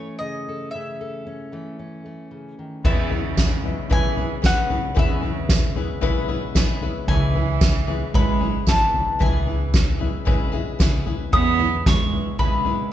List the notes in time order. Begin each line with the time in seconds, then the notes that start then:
Already playing: E3 A3 C#4 A4 C#5
0.19 C#3 D#5
0.48 A4
0.71 C#3 E5
0.75 C#4
1.01 A4
1.27 C#4
1.52 E3 A3
1.79 C#4
2.06 A3
2.31 C#3
2.59 D#3
2.84 E2 C#3 E3 G#3 B3 C#4 E4 G#4 B4 E5, kick, floor tom, crash
3.10 G#3 B3 C#4 E4 G#4 B4 E5, floor tom
3.37 G#3 C#4 E4 B4 E5, kick, snare, floor tom, tambourine
3.64 G#3 C#4 E4 B4 E5, floor tom
3.90 B1 C#3 E3 G#3 B3 C#4 E4 G#4 B4 E5 G#5, kick, floor tom
4.16 G#3 B3 C#4 E4 G#4 B4 E5, floor tom
4.42 G#3 B3 C#4 E4 G#4 B4 E5, kick, snare, floor tom, tambourine
4.46 C#3 F#5
4.69 G#3 B3 C#4 E4 G#4 B4 E5, floor tom
4.95 E2 C#3 E3 G#3 B3 C#4 E4 G#4 B4 E5, kick, floor tom
4.99 C#3 E5
5.22 G#3 B3 C#4 E4 G#4 B4 E5, floor tom
5.49 G#3 C#4 E4 B4 E5, kick, snare, floor tom, tambourine
5.75 G#3 B3 C#4 E4 G#4 B4 E5, floor tom
6.01 B1 C#3 E3 G#3 B3 C#4 E4 G#4 B4 E5, kick, floor tom
6.28 G#3 B3 C#4 E4 G#4 B4 E5, floor tom
6.55 G#3 B3 C#4 E4 G#4 B4 E5, kick, snare, floor tom, tambourine
6.81 G#3 B3 C#4 E4 G#4 B4 E5, floor tom
7.07 C#2 C#3 E3 G#3 B3 C#4 E4 G#4 B4 E5 G#5, kick, floor tom
7.35 G#3 C#4 E4 G#4 B4 E5, floor tom
7.60 G#3 C#4 E4 B4 E5, kick, snare, floor tom, tambourine
7.87 G#3 C#4 E4 G#4 B4 E5, floor tom
8.14 G#1 C#3 G#3 B3 C#4 E4 G#4 B4 E5 B5, kick, floor tom
8.40 G#3 C#4 E4 G#4 B4 E5, floor tom
8.67 E3 G#3 B3 C#4 E4 B4 E5 A5, kick, snare, floor tom, tambourine
8.94 G#3 C#4 E4 B4 E5, floor tom
9.19 C#2 C#3 E3 G#3 B3 C#4 E4 G#4 B4 E5 G#5, kick, floor tom
9.47 G#3 C#4 E4 G#4 B4 E5, floor tom
9.74 G#3 C#4 E4 B4 E5, kick, snare, floor tom, tambourine
9.99 G#3 C#4 E4 G#4 B4 E5, floor tom
10.25 G#1 C#3 G#3 B3 C#4 E4 G#4 B4 E5, kick, floor tom
10.52 B1 G#3 C#4 E4 G#4 B4 E5, floor tom
10.79 C#2 G#3 B3 C#4 E4 G#4 B4 E5, kick, snare, floor tom, tambourine
11.06 D#2 G#3 C#4 E4 G#4 B4 E5, floor tom
11.32 E2 C#3 E3 G#3 B3 C#4 E4 G#4 B4 E5 D#6, kick, floor tom
11.58 G#3 B3 C#4 E4 G#4 B4 E5, floor tom
11.86 G#3 C#4 E4 B4 E5 C#6, kick, snare, floor tom, tambourine
12.12 G#3 C#4 E4 B4 E5, floor tom
12.39 B1 C#3 E3 G#3 B3 C#4 E4 G#4 B4 E5 B5, kick, floor tom
12.65 G#3 B3 C#4 E4 G#4 B4 E5, floor tom